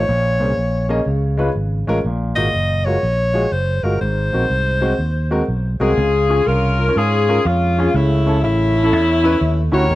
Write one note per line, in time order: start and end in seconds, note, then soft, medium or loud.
0.00 0.89 C#5 loud
0.08 0.40 A#1 loud
0.08 0.85 A#2 medium
0.40 0.55 C2 medium
0.40 0.49 A#3 medium
0.40 0.49 C#4 medium
0.40 0.49 G#4 medium
0.40 0.50 C5 medium
0.57 0.99 A#1 medium
0.89 0.98 A#3 medium
0.89 0.98 C#4 medium
0.89 0.99 G#4 medium
0.89 0.99 D#5 medium
1.06 1.48 C#2 medium
1.06 1.84 C#3 medium
1.37 1.47 G#3 medium
1.37 1.47 C#4 medium
1.37 1.48 F4 medium
1.37 1.48 B4 medium
1.56 1.83 G#1 medium
1.87 2.02 A1 medium
1.87 1.96 G#3 medium
1.87 1.97 C#4 medium
1.87 1.97 F4 medium
1.87 1.97 A#4 loud
2.04 2.32 A#1 medium
2.04 2.82 A#2 medium
2.36 2.52 G#1 medium
2.36 2.45 G#3 medium
2.36 2.46 F4 medium
2.36 2.46 F#4 medium
2.36 2.46 A#4 medium
2.36 2.87 D#5 loud
2.54 2.96 F#1 medium
2.85 2.95 G#3 medium
2.85 2.95 F4 medium
2.85 2.95 F#4 medium
2.85 2.96 A#4 medium
2.85 3.54 C#5 loud
3.03 3.45 A#1 medium
3.34 3.43 G#3 medium
3.34 3.44 F4 medium
3.34 3.44 F#4 medium
3.34 3.44 G#4 medium
3.52 3.79 F#1 medium
3.52 3.85 C5 medium
3.83 3.99 G1 medium
3.83 3.93 G#3 medium
3.83 3.93 F4 medium
3.83 3.93 F#4 medium
3.83 4.01 A#4 medium
3.83 3.94 A#4 medium
4.01 4.28 G#1 medium
4.01 4.78 G#2 medium
4.01 5.45 C5 medium
4.32 4.48 A#1 medium
4.32 4.42 G#3 medium
4.32 4.42 C4 medium
4.32 4.43 F#4 medium
4.32 4.43 A#4 medium
4.50 4.92 C2 medium
4.81 4.91 G#3 medium
4.81 4.91 C4 medium
4.81 4.91 F#4 medium
4.81 4.91 C5 medium
4.99 5.41 D#2 medium
5.31 5.40 G#3 medium
5.31 5.40 C4 medium
5.31 5.41 F#4 medium
5.31 5.41 A#4 medium
5.49 5.76 B1 medium
5.80 5.95 C2 medium
5.80 5.89 G#3 medium
5.80 5.90 C4 medium
5.80 6.46 C#4 medium
5.80 6.46 F4 medium
5.80 5.90 F#4 medium
5.80 6.43 G#4 medium
5.80 5.90 A#4 medium
5.97 6.40 C#2 loud
5.97 6.75 C#3 medium
6.29 6.39 C#4 medium
6.29 6.39 F4 medium
6.29 6.39 G#4 medium
6.47 6.89 C2 medium
6.47 6.97 C#4 medium
6.47 6.97 F4 medium
6.47 6.96 A#4 loud
6.79 6.83 F4 soft
6.79 6.84 A#4 medium
6.88 6.97 C#4 medium
6.88 6.98 F4 medium
6.88 6.98 A#4 medium
6.96 7.38 G#2 loud
6.96 7.46 C#4 medium
6.96 7.45 F4 medium
6.96 7.46 G#4 loud
7.28 7.37 C#4 medium
7.28 7.38 F4 medium
7.28 7.38 A#4 medium
7.45 7.87 F2 medium
7.45 7.92 G#3 medium
7.45 7.92 C#4 medium
7.45 7.95 F4 medium
7.78 7.87 C#4 medium
7.78 7.87 F4 medium
7.78 7.87 G#4 medium
7.94 8.44 C#2 loud
7.94 8.72 C#3 medium
7.94 8.42 A3 medium
7.94 8.42 C#4 medium
7.94 8.42 E4 loud
8.26 8.35 C#4 medium
8.26 8.36 E4 medium
8.26 8.36 A4 medium
8.43 8.93 A1 medium
8.43 9.69 A3 medium
8.43 9.69 C#4 medium
8.43 9.69 E4 loud
8.75 8.80 E4 soft
8.75 8.81 A4 medium
8.83 8.93 C#4 medium
8.83 8.93 E4 medium
8.83 8.93 A4 medium
8.93 9.34 E2 medium
9.24 9.33 C#4 medium
9.24 9.33 E4 medium
9.24 9.34 B4 loud
9.41 9.68 D#2 medium
9.72 9.88 D2 loud
9.72 9.81 C#4 medium
9.72 9.82 E4 medium
9.72 9.82 F#4 medium
9.72 9.95 G4 medium
9.72 9.95 A#4 medium
9.72 9.95 C#5 loud
9.90 9.95 D#2 loud
9.90 9.95 D#3 medium